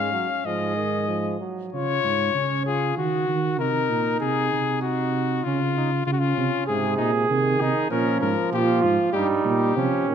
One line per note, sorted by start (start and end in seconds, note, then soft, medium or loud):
0.00 0.15 G#2 medium
0.00 0.12 G#3 medium
0.00 0.41 C#4 medium
0.00 0.47 F5 medium
0.13 0.27 F#3 medium
0.45 1.37 G#2 medium
0.45 0.76 F3 medium
0.45 1.39 G#4 medium
0.45 1.41 D#5 medium
0.76 1.07 D#3 medium
1.08 1.39 F3 medium
1.40 1.71 F#3 medium
1.72 2.02 C#3 medium
1.72 2.31 F4 medium
1.72 2.62 C#5 medium
2.04 2.34 G#2 medium
2.35 2.96 C#3 medium
2.35 2.66 C#4 medium
2.66 2.97 F4 medium
2.66 2.97 G#4 medium
2.97 3.27 D#3 medium
2.97 3.58 F#4 medium
2.97 3.62 F#4 medium
3.28 3.61 D#3 medium
3.59 3.91 C3 medium
3.59 4.84 D#4 medium
3.59 4.20 A#4 medium
3.90 4.21 A#2 medium
4.20 4.52 C3 medium
4.20 4.81 G#4 medium
4.53 5.44 C3 medium
4.82 5.44 D#4 medium
4.82 5.45 F#4 medium
5.44 6.06 C#3 medium
5.44 5.60 C#4 medium
5.44 6.06 F4 medium
5.77 5.91 D#4 medium
6.06 6.37 C#3 medium
6.06 6.67 C#4 medium
6.06 6.14 F4 medium
6.13 6.21 F#4 medium
6.20 6.66 F4 medium
6.38 6.51 C3 medium
6.67 6.98 G#2 medium
6.67 7.25 C3 medium
6.67 6.96 G#4 medium
6.67 7.63 G#4 loud
6.97 7.29 A#2 medium
6.97 7.11 D#4 medium
7.28 7.59 C3 medium
7.28 7.89 D#3 medium
7.28 7.89 G#4 medium
7.60 7.74 C3 medium
7.60 7.90 D#4 medium
7.90 8.21 A#2 medium
7.90 9.11 F3 medium
7.90 8.30 C#4 medium
7.90 8.20 A#4 medium
8.21 8.36 G#2 medium
8.21 8.51 A#4 medium
8.53 8.83 A#2 medium
8.53 9.10 F4 medium
8.53 8.84 G4 medium
8.83 8.98 G#2 medium
8.83 9.12 F4 medium
9.13 9.44 G2 medium
9.13 9.74 G3 medium
9.13 9.75 D#4 medium
9.13 9.27 G4 medium
9.45 9.76 A#2 medium
9.45 10.09 G4 medium
9.75 9.91 C3 medium
9.75 10.06 F3 medium
9.75 10.15 C#4 medium
10.07 10.15 A#2 medium
10.07 10.15 D#3 medium